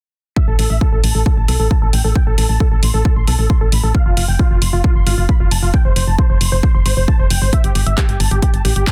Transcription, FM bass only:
0.48 0.57 A1 medium
0.59 0.68 A1 loud
0.70 0.79 A1 medium
0.93 1.02 A1 medium
1.04 1.13 A1 loud
1.15 1.24 A1 medium
1.37 1.46 A1 medium
1.48 1.58 B1 medium
1.60 1.69 A1 medium
1.82 1.91 A1 medium
1.93 2.02 A1 loud
2.04 2.14 A1 medium
2.27 2.36 A1 medium
2.38 2.47 A1 medium
2.49 2.58 A1 medium
2.72 2.81 A1 medium
2.83 2.92 A1 medium
2.94 3.03 A1 medium
3.16 3.26 A1 medium
3.28 3.37 B1 medium
3.39 3.48 A1 medium
3.61 3.70 A1 medium
3.72 3.81 A1 loud
3.84 3.93 A1 medium
4.06 4.15 F1 medium
4.17 4.26 F1 medium
4.28 4.37 F1 medium
4.51 4.60 F1 medium
4.62 4.71 F1 loud
4.73 4.82 F1 medium
4.95 5.05 F1 medium
5.07 5.16 G1 loud
5.18 5.27 F1 medium
5.40 5.49 F1 medium
5.51 5.61 F1 medium
5.63 5.72 F1 medium
5.85 5.94 F1 medium
5.96 6.05 F1 loud
6.07 6.17 F1 medium
6.30 6.39 F1 medium
6.41 6.50 F1 medium
6.52 6.61 F1 medium
6.75 6.84 F1 medium
6.86 6.95 G1 medium
6.97 7.06 F1 medium
7.19 7.28 F1 medium
7.31 7.40 F1 loud
7.42 7.51 G1 medium
7.64 7.73 G1 medium
7.75 7.84 G1 loud
7.86 7.96 G1 medium
8.09 8.18 G1 medium
8.20 8.29 G1 loud
8.31 8.40 G1 medium
8.54 8.63 G1 medium
8.65 8.74 A1 loud
8.76 8.85 G1 medium

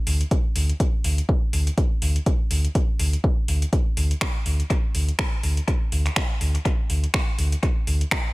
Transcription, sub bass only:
0.07 0.23 D2 medium
0.56 0.72 D2 loud
1.04 1.21 D2 medium
1.53 1.70 D2 medium
2.02 2.18 D2 medium
2.51 2.67 D2 medium
2.99 3.16 D2 medium
3.48 3.65 D2 medium
3.97 4.14 D2 medium
4.46 4.62 D2 loud
4.95 5.11 D2 medium
5.43 5.60 D2 medium
5.92 6.09 D2 medium
6.41 6.57 D2 loud
6.90 7.06 D2 medium
7.38 7.55 D2 medium
7.87 8.04 D2 medium

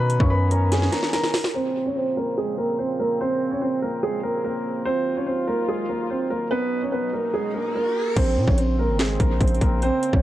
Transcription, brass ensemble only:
0.00 1.37 D#3 medium
0.00 1.37 B3 medium
0.00 1.37 C#4 medium
1.54 4.82 A#2 medium
1.54 4.82 C#3 medium
1.54 4.82 F3 medium
1.54 4.82 C4 medium
4.86 6.49 D#2 medium
4.86 6.49 D#3 medium
4.86 7.99 F#3 medium
4.86 6.49 F4 medium
6.51 7.99 B2 medium
6.51 7.99 C#4 medium
6.51 7.99 D#4 medium
8.16 10.22 C#3 medium
8.16 10.22 A#3 medium
8.16 10.22 C4 medium

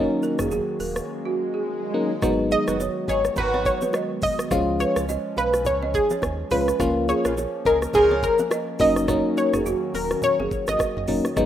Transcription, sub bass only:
0.39 0.60 F#1 medium
0.80 1.01 D#1 medium
2.23 2.56 G#1 loud
2.68 2.89 F#1 medium
3.08 3.30 G#1 medium
3.37 3.71 G#1 loud
4.51 4.85 C#2 loud
4.96 5.18 C#2 medium
5.37 5.67 B1 medium
5.66 5.99 C#2 loud
6.23 6.44 D#2 medium
6.51 6.73 C#2 loud
6.80 7.14 C#2 loud
7.25 7.46 A#1 loud
7.66 7.87 C#2 medium
7.94 8.28 C#2 loud
8.80 9.23 F#1 loud
9.53 9.75 F#1 medium
9.94 10.15 D#1 medium
10.39 10.48 F#1 medium
10.68 10.77 G#1 medium
10.96 11.05 F#1 medium
11.08 11.21 F#1 loud
11.37 11.46 G#1 loud

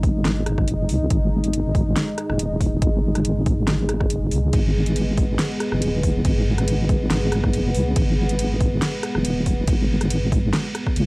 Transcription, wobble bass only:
0.00 0.24 G#1 loud
0.25 0.69 G#1 loud
0.68 0.91 F#1 medium
0.89 1.09 C#2 loud
1.11 1.95 G#1 loud
2.30 2.38 F#1 loud
2.39 2.81 D#1 medium
2.82 3.66 G#1 loud
3.68 4.12 G#1 loud
4.10 4.33 F#1 medium
4.32 4.52 C#2 loud
4.54 5.38 G#1 loud
5.72 5.81 F#1 loud
5.82 6.24 D#1 loud
6.25 7.09 G#1 loud
7.11 7.55 G#1 loud
7.53 7.76 F#1 medium
7.75 7.95 C#2 loud
7.96 8.81 G#1 loud
9.15 9.24 F#1 loud
9.25 9.67 D#1 loud
9.68 10.52 G#1 loud
10.96 11.06 C#2 loud

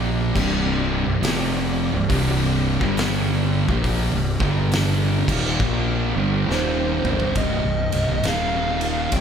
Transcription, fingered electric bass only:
0.00 0.31 A#1 loud
0.36 1.03 C1 medium
1.06 1.20 C1 medium
1.21 1.89 F1 medium
1.93 2.08 C1 medium
2.09 2.77 C1 loud
2.81 3.64 G1 loud
3.69 4.09 A#1 loud
4.11 4.38 C1 medium
4.41 5.24 G1 medium
5.27 5.57 D#1 loud
5.60 6.12 A#1 medium
6.16 6.45 G1 loud
6.48 7.00 D#1 loud
7.03 7.33 G1 loud
7.36 7.62 C1 medium
7.63 7.90 C1 medium
7.93 8.07 C1 medium
8.09 8.23 C1 medium
8.24 9.09 D#1 medium
9.12 9.21 C1 medium

